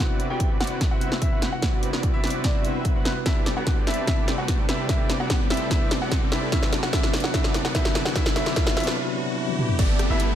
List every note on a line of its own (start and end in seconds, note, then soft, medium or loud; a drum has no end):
0.00 0.28 C2 medium
0.00 0.98 C3 medium
0.00 3.23 C3 medium
0.00 3.23 G3 medium
0.00 0.98 B3 medium
0.00 0.28 C4 medium
0.00 0.99 D4 medium
0.00 6.48 D4 medium
0.00 0.28 E4 medium
0.00 6.49 E4 medium
0.00 0.99 E4 medium
0.00 0.17 F#4 medium
0.00 0.28 F#4 medium
0.00 3.23 F#4 medium
0.00 1.00 F#4 medium
0.00 0.28 B4 medium
0.00 6.48 B4 medium
0.00 0.28 D5 medium
0.00 0.17 F#5 medium
0.00 riser medium
0.20 closed hi-hat medium
0.30 0.59 C2 medium
0.30 0.58 C4 medium
0.30 0.58 E4 medium
0.30 0.58 F#4 medium
0.30 0.48 G4 medium
0.30 0.58 B4 medium
0.30 0.58 D5 medium
0.30 0.48 G5 medium
0.40 kick medium
0.40 closed hi-hat medium
0.60 0.89 C4 medium
0.60 0.89 E4 medium
0.60 0.78 F#4 medium
0.60 0.89 F#4 medium
0.60 0.89 B4 medium
0.60 0.89 D5 loud
0.60 0.78 F#5 medium
0.60 snare medium
0.60 closed hi-hat soft
0.64 closed hi-hat medium
0.67 closed hi-hat medium
0.81 kick loud
0.81 snare medium
0.81 closed hi-hat medium
0.91 1.30 C2 medium
0.91 1.30 C4 medium
0.91 1.30 E4 medium
0.91 1.09 F#4 medium
0.91 1.30 F#4 medium
0.91 1.30 B4 medium
0.91 1.30 E5 loud
0.91 1.09 F#5 medium
0.99 1.59 C3 medium
0.99 1.60 B3 medium
0.99 1.60 D4 medium
0.99 1.61 E4 medium
0.99 closed hi-hat medium
1.03 1.61 F#4 medium
1.12 snare medium
1.22 1.40 E4 medium
1.22 1.40 E5 medium
1.22 kick medium
1.22 closed hi-hat medium
1.32 1.61 C2 medium
1.32 1.51 C4 medium
1.32 1.51 E4 medium
1.32 1.51 F#4 medium
1.32 1.51 B4 medium
1.32 1.51 F#5 medium
1.42 snare medium
1.42 closed hi-hat medium
1.52 1.70 F#4 medium
1.52 1.70 F#5 medium
1.61 2.61 C3 medium
1.61 2.62 B3 medium
1.61 1.91 C4 medium
1.61 2.62 D4 medium
1.61 1.91 E4 medium
1.61 2.63 E4 medium
1.61 1.91 F#4 medium
1.61 2.63 F#4 medium
1.61 1.91 B4 medium
1.61 1.91 D5 medium
1.61 kick medium
1.61 snare medium
1.61 closed hi-hat medium
1.83 closed hi-hat medium
1.93 2.22 C2 medium
1.93 2.21 C4 medium
1.93 2.21 E4 medium
1.93 2.21 F#4 medium
1.93 2.21 B4 medium
1.93 2.21 D5 medium
1.93 snare medium
2.03 kick medium
2.03 closed hi-hat medium
2.14 2.32 E4 medium
2.14 2.32 E5 medium
2.24 2.53 C2 medium
2.24 2.52 C4 medium
2.24 2.52 E4 medium
2.24 2.52 F#4 medium
2.24 2.52 B4 medium
2.24 2.52 D5 loud
2.24 snare medium
2.24 closed hi-hat soft
2.27 closed hi-hat medium
2.30 closed hi-hat medium
2.44 2.62 D4 medium
2.44 2.62 D5 medium
2.44 kick loud
2.44 snare medium
2.44 closed hi-hat medium
2.55 2.93 C2 medium
2.55 2.93 C4 medium
2.55 2.93 E4 medium
2.55 2.93 F#4 medium
2.55 2.93 B4 medium
2.55 2.93 E5 loud
2.63 3.22 C3 medium
2.63 3.23 B3 medium
2.63 3.23 D4 medium
2.63 3.24 E4 medium
2.63 3.24 F#4 medium
2.63 closed hi-hat medium
2.85 kick medium
2.85 closed hi-hat medium
2.95 3.24 C2 loud
2.95 3.14 C4 medium
2.95 3.14 E4 medium
2.95 3.14 F#4 medium
2.95 3.14 B4 medium
2.95 3.14 F#5 medium
3.05 3.17 B3 medium
3.05 3.17 B4 medium
3.05 snare medium
3.05 closed hi-hat medium
3.24 4.04 C3 medium
3.24 6.49 C3 medium
3.24 4.05 G3 medium
3.24 8.93 A3 medium
3.24 4.06 B3 medium
3.24 3.54 C4 medium
3.24 4.06 D4 medium
3.24 3.44 E4 medium
3.24 4.07 E4 medium
3.24 3.54 G4 medium
3.24 6.49 G4 medium
3.24 3.54 A4 medium
3.24 3.54 B4 medium
3.24 3.54 D5 medium
3.24 3.44 E5 medium
3.24 kick loud
3.24 snare medium
3.24 closed hi-hat medium
3.46 snare medium
3.46 closed hi-hat medium
3.57 3.85 C2 medium
3.57 3.85 C4 medium
3.57 3.75 F#4 medium
3.57 3.85 G4 medium
3.57 3.85 A4 medium
3.57 3.85 B4 medium
3.57 3.85 D5 medium
3.57 3.75 F#5 medium
3.67 kick medium
3.67 snare medium
3.67 closed hi-hat medium
3.87 4.06 C4 medium
3.87 4.05 E4 medium
3.87 4.06 G4 medium
3.87 4.06 A4 medium
3.87 4.06 B4 medium
3.87 4.06 D5 medium
3.87 4.05 E5 medium
3.87 snare medium
3.87 closed hi-hat soft
3.90 closed hi-hat medium
3.94 closed hi-hat medium
4.05 4.86 C3 medium
4.05 4.87 G3 medium
4.05 4.87 B3 medium
4.05 4.88 D4 medium
4.05 4.25 E4 medium
4.05 4.25 E5 medium
4.05 kick loud
4.05 snare medium
4.05 closed hi-hat medium
4.09 4.88 E4 medium
4.28 snare medium
4.28 closed hi-hat medium
4.38 4.67 C2 medium
4.38 4.66 C4 medium
4.38 4.56 F#4 medium
4.38 4.66 G4 medium
4.38 4.66 A4 medium
4.38 4.66 B4 medium
4.38 4.66 D5 medium
4.38 4.56 F#5 medium
4.48 kick medium
4.48 snare medium
4.48 closed hi-hat medium
4.69 4.88 C4 medium
4.69 4.87 E4 medium
4.69 4.88 G4 medium
4.69 4.88 A4 medium
4.69 4.88 B4 medium
4.69 4.88 D5 loud
4.69 4.87 E5 medium
4.69 snare medium
4.69 closed hi-hat medium
4.87 5.67 C3 medium
4.87 5.68 G3 medium
4.87 5.69 B3 medium
4.87 5.70 D4 medium
4.87 5.07 E4 medium
4.87 5.07 E5 medium
4.87 kick medium
4.87 snare medium
4.87 closed hi-hat medium
4.91 5.70 E4 medium
5.10 snare medium
5.10 closed hi-hat medium
5.20 5.48 C2 medium
5.20 5.48 C4 medium
5.20 5.38 F#4 medium
5.20 5.48 G4 medium
5.20 5.48 A4 medium
5.20 5.48 B4 medium
5.20 5.48 D5 medium
5.20 5.38 F#5 medium
5.30 kick loud
5.30 snare medium
5.30 closed hi-hat medium
5.50 5.69 C4 medium
5.50 5.68 E4 medium
5.50 5.69 G4 medium
5.50 5.69 A4 medium
5.50 5.69 B4 medium
5.50 5.69 D5 loud
5.50 5.68 E5 medium
5.50 snare medium
5.50 closed hi-hat soft
5.54 closed hi-hat medium
5.57 closed hi-hat medium
5.68 6.49 C3 medium
5.68 6.50 G3 medium
5.68 6.51 B3 medium
5.68 5.99 C4 medium
5.68 6.51 D4 medium
5.68 5.89 E4 medium
5.68 6.52 E4 medium
5.68 5.99 G4 medium
5.68 5.99 A4 medium
5.68 5.99 B4 medium
5.68 5.99 D5 medium
5.68 5.89 E5 loud
5.68 kick loud
5.68 snare medium
5.68 closed hi-hat medium
5.91 snare medium
5.91 closed hi-hat medium
6.01 6.30 C2 medium
6.01 6.30 C4 medium
6.01 6.19 F#4 medium
6.01 6.30 G4 medium
6.01 6.30 A4 medium
6.01 6.30 B4 medium
6.01 6.30 D5 medium
6.01 6.20 F#5 medium
6.12 kick medium
6.12 snare medium
6.12 closed hi-hat medium
6.32 6.51 C4 medium
6.32 6.50 E4 medium
6.32 6.51 G4 medium
6.32 6.51 A4 medium
6.32 6.51 B4 medium
6.32 6.51 D5 loud
6.32 6.50 E5 medium
6.32 snare medium
6.32 closed hi-hat medium
6.50 6.90 C3 medium
6.50 8.95 D3 medium
6.50 6.91 F#3 medium
6.50 6.92 B3 medium
6.50 6.81 C4 medium
6.50 6.92 D4 medium
6.50 6.70 E4 medium
6.50 8.95 E4 medium
6.50 6.81 F#4 medium
6.50 8.95 F#4 medium
6.50 6.81 A4 medium
6.50 6.81 B4 medium
6.50 6.81 D5 medium
6.50 6.70 E5 medium
6.50 kick loud
6.50 snare medium
6.50 closed hi-hat medium
6.54 6.93 E4 medium
6.63 snare medium
6.73 snare medium
6.73 closed hi-hat medium
6.83 6.92 C4 medium
6.83 6.91 F#4 medium
6.83 6.92 F#4 medium
6.83 6.92 A4 medium
6.83 6.92 B4 medium
6.83 6.92 D5 medium
6.83 6.91 F#5 medium
6.83 snare medium
6.91 7.31 C3 medium
6.91 7.32 F#3 medium
6.91 7.32 B3 medium
6.91 7.22 C4 medium
6.91 7.33 D4 medium
6.91 7.11 E4 medium
6.91 7.22 F#4 medium
6.91 7.22 A4 medium
6.91 7.11 E5 loud
6.91 kick loud
6.91 snare loud
6.91 closed hi-hat medium
6.95 7.33 E4 medium
7.03 snare medium
7.13 snare medium
7.13 closed hi-hat soft
7.17 closed hi-hat medium
7.20 7.32 C4 medium
7.20 7.32 F#4 medium
7.20 7.32 A4 medium
7.20 7.32 B4 medium
7.20 7.32 D5 medium
7.20 7.32 F#5 medium
7.20 snare medium
7.20 closed hi-hat medium
7.32 7.72 C3 medium
7.32 7.73 F#3 medium
7.32 7.73 B3 medium
7.32 7.62 C4 medium
7.32 7.74 D4 medium
7.32 7.52 E4 medium
7.32 7.74 E4 medium
7.32 7.62 F#4 medium
7.32 7.62 A4 medium
7.32 7.52 E5 loud
7.32 kick loud
7.32 snare medium
7.32 closed hi-hat medium
7.44 snare medium
7.54 snare loud
7.54 closed hi-hat medium
7.65 7.73 C4 medium
7.65 7.73 F#4 medium
7.65 7.73 A4 medium
7.65 7.73 B4 medium
7.65 7.73 D5 medium
7.65 7.73 F#5 medium
7.65 snare medium
7.73 8.12 C3 medium
7.73 8.13 F#3 medium
7.73 8.14 B3 medium
7.73 8.03 C4 medium
7.73 8.15 D4 medium
7.73 7.93 E4 medium
7.73 8.15 E4 loud
7.73 8.03 F#4 medium
7.73 8.03 A4 medium
7.73 8.03 B4 medium
7.73 8.03 D5 loud
7.73 7.93 E5 loud
7.73 kick medium
7.73 snare loud
7.73 closed hi-hat medium
7.85 snare medium
7.95 snare loud
7.95 closed hi-hat medium
8.05 8.14 C4 medium
8.05 8.14 F#4 medium
8.05 8.14 A4 medium
8.05 8.14 B4 medium
8.05 8.14 D5 medium
8.05 8.14 F#5 medium
8.05 snare medium
8.13 8.33 C3 medium
8.13 8.34 F#3 medium
8.13 8.34 B3 medium
8.13 8.35 C4 medium
8.13 8.35 D4 medium
8.13 8.34 E4 medium
8.13 8.34 F#4 medium
8.13 8.35 A4 medium
8.13 8.34 E5 loud
8.13 kick loud
8.13 snare loud
8.13 closed hi-hat medium
8.18 8.35 E4 medium
8.26 snare medium
8.34 8.53 C3 medium
8.34 8.54 F#3 medium
8.34 8.55 B3 medium
8.34 8.55 C4 medium
8.34 8.55 D4 medium
8.34 8.54 E4 medium
8.34 8.56 E4 loud
8.34 8.55 F#4 medium
8.34 8.55 A4 medium
8.34 8.55 B4 medium
8.34 8.55 D5 loud
8.34 8.54 E5 loud
8.34 snare loud
8.34 closed hi-hat medium
8.46 snare medium
8.54 8.74 C3 medium
8.54 8.75 F#3 medium
8.54 8.75 B3 medium
8.54 8.75 C4 medium
8.54 8.76 D4 medium
8.54 8.74 E4 medium
8.54 8.75 F#4 medium
8.54 8.75 A4 medium
8.54 8.75 B4 medium
8.54 8.75 D5 loud
8.54 8.74 E5 loud
8.54 kick loud
8.54 snare loud
8.54 closed hi-hat medium
8.58 8.76 E4 loud
8.67 snare medium
8.75 8.94 C3 medium
8.75 8.95 F#3 medium
8.75 8.96 B3 medium
8.75 8.96 C4 medium
8.75 8.96 D4 medium
8.75 8.95 E4 medium
8.75 8.96 F#4 medium
8.75 8.96 A4 medium
8.75 8.96 B4 medium
8.75 8.96 D5 loud
8.75 8.95 E5 loud
8.75 snare loud
8.75 closed hi-hat soft
8.79 8.97 E4 loud
8.79 closed hi-hat medium
8.84 snare medium
8.84 closed hi-hat medium
8.95 9.14 C3 medium
8.95 9.16 F#3 medium
8.95 9.16 B3 medium
8.95 9.16 D4 medium
8.99 9.17 E4 medium
9.15 9.35 C3 medium
9.15 9.36 F#3 medium
9.15 9.36 B3 medium
9.15 9.37 D4 medium
9.20 9.37 E4 loud
9.36 9.55 C3 medium
9.36 9.56 F#3 medium
9.36 9.57 B3 medium
9.36 9.57 D4 medium
9.36 9.58 E4 loud
9.48 high tom medium
9.57 9.76 C3 medium
9.57 9.77 F#3 medium
9.57 9.77 B3 medium
9.57 9.78 D4 medium
9.57 9.78 E4 loud
9.57 mid tom medium
9.69 mid tom medium
9.79 10.08 G1 medium
9.79 10.07 B3 medium
9.79 9.97 D4 medium
9.79 10.07 E4 medium
9.79 10.07 G4 medium
9.79 10.07 A4 medium
9.79 9.97 D5 loud
9.79 10.07 D5 loud
9.79 kick loud
9.79 closed hi-hat medium
9.79 crash loud
9.79 downlifter medium
9.99 cross-stick medium
9.99 closed hi-hat medium
10.10 10.35 G1 medium
10.10 10.35 B3 medium
10.10 10.35 E4 medium
10.10 10.28 E4 medium
10.10 10.35 G4 medium
10.10 10.35 A4 medium
10.10 10.35 B4 medium
10.10 10.28 E5 medium
10.20 closed hi-hat medium